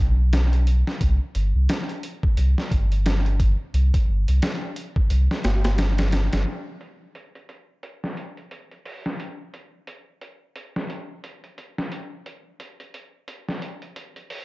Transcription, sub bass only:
0.00 B1
1.01 C2
1.35 G1
1.55 C2
2.38 C2
2.72 G1
3.74 C2
4.08 G1
4.28 C2
5.10 C2
5.45 G1
6.33 G1

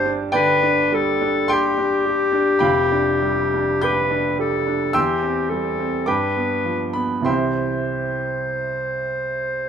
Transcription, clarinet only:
Already playing: C5
0.35 B4
0.94 A4
1.53 G4
3.84 B4
4.40 A4
4.95 G4
5.50 A4
6.08 B4
7.27 C5

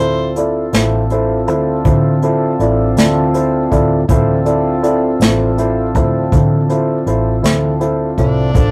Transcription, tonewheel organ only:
Already playing: C4 D4 F4 A4
4.08 C4 D4 F4 A4
8.54 A#3 D4 F4 A5

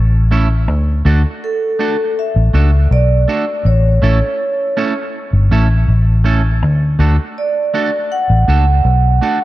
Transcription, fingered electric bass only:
Already playing: A1
0.68 D2
1.05 D2
2.36 A1
2.54 C#2
2.91 B1
3.65 A1
4.02 A1
5.33 G1
5.51 A1
5.88 A1
6.62 D2
6.99 D2
8.30 A1
8.48 C#2
8.85 B1

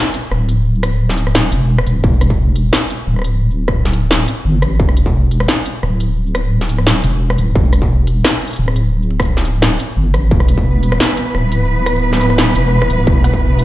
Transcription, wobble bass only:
0.31 D1
1.52 E1
1.87 D1
2.04 E1
3.07 D1
4.45 G1
4.62 A1
4.80 E1
5.83 D1
7.04 E1
7.38 D1
7.56 E1
8.59 D1
9.97 G1
10.14 A1
10.31 E1
11.35 D1
12.55 E1
12.90 D1
13.07 E1

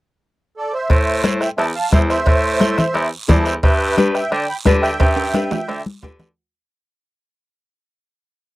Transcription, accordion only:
0.57 A4 D5
0.73 C5 E5
0.91 C5 E5
1.41 E5 G5
1.58 E5 A5
1.75 F5 A5
1.92 C5 E5
2.10 C5 E5
3.29 A4 D5
3.47 C5 E5
3.63 B4 E5
4.15 E5 G5
4.32 D5 G5
4.48 G5 B5
4.66 D5 A5
4.82 E5 G5

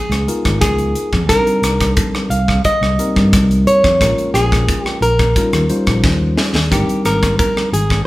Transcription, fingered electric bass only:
0.10 C#2
0.45 G#1
0.61 C#2
1.12 F2
1.28 C2
1.62 C2
2.30 C2
2.81 C2
3.16 G2
3.32 C2
3.84 F2
4.00 A#1
4.34 A#1
5.01 A#1
5.36 muted fingered electric bass stroke
5.53 D#2
5.87 A#1
6.03 D#2
6.54 D#2
6.71 G#1
6.88 muted fingered electric bass stroke
7.05 G#1
7.72 G#1

